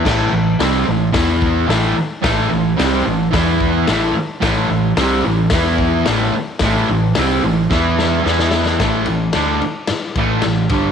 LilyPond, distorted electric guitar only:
\new Staff \with { instrumentName = "Distorted electric guitar" } { \clef bass \time 4/4 \key a \minor \tempo 4 = 110 <a, e a>8 <a, e>8 <c g c'>8 <a, e>8 <e b e'>4 <a, e a>8 r8 | <a, e a>8 <a, e>8 <c g c'>8 <a, e>8 <e b e'>4 <a, e a>8 r8 | <a, e a>8 <a, e>8 <c g c'>8 <a, e>8 <e b e'>4 <a, e a>8 r8 | <a, e a>8 <a, e>8 <c g c'>8 <a, e>8 <e b e'>4 <e b e'>4 |
<a, e a>8 <a, e>8 <d a d'>8 r4 <a, e a>8 <a, e>8 <g, d g>8 | }